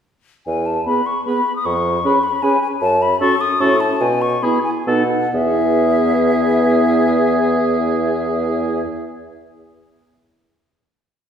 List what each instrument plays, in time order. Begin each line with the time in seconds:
0.47 bassoon E2, flute G#5
0.66 flute A5
0.86 french horn B3, clarinet G#4, oboe B4, flute B5
1.06 flute C#6
1.25 french horn B3, clarinet G#4, oboe B4, flute B5
1.56 flute D#6
1.66 bassoon F2, flute C#6
2.05 french horn C#4, clarinet G#4, oboe B4
2.23 flute B5
2.42 french horn C#4, clarinet G#4, oboe B4, flute G#5
2.62 flute G#5
2.81 bassoon F#2, flute A5
3.02 flute B5
3.21 french horn C#4, clarinet F#4, oboe A4, flute C#6
3.41 flute D#6
3.60 bassoon A2, french horn C#4, clarinet F#4, oboe A4, flute C#6
3.80 flute A5
4.01 bassoon B2, flute G#5
4.22 flute C#6
4.43 french horn B3, clarinet E4, oboe G#4, flute B5
4.64 flute G#5
4.87 bassoon B2, french horn B3, clarinet D#4, oboe A4, flute F#5
5.34 bassoon E2, french horn B3, clarinet E4, oboe G#4, flute E5